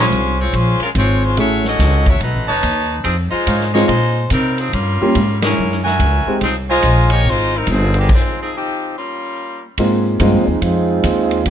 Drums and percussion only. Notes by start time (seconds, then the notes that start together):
0.11 hi-hat pedal
0.53 kick, ride
0.80 ride
0.95 kick, hi-hat pedal, ride
1.37 kick, ride
1.64 snare
1.79 kick, snare, hi-hat pedal, ride
2.06 kick, ride
2.20 kick, ride
2.63 kick, hi-hat pedal, ride
3.04 kick, ride
3.47 kick, hi-hat pedal, ride
3.61 snare
3.75 snare
3.89 kick, ride
4.30 kick, hi-hat pedal, ride
4.58 ride
4.73 kick, ride
5.15 kick, hi-hat pedal, ride
5.42 snare, ride
5.72 snare
5.86 snare
5.99 kick, hi-hat pedal, ride
6.41 kick, ride
6.82 kick, hi-hat pedal, ride
7.10 ride
7.25 kick
7.67 kick, hi-hat pedal, ride
7.94 ride
8.09 kick, crash
9.78 kick, ride
10.20 kick, hi-hat pedal, ride
10.62 kick, ride
11.04 kick, hi-hat pedal, ride
11.31 ride
11.46 kick, ride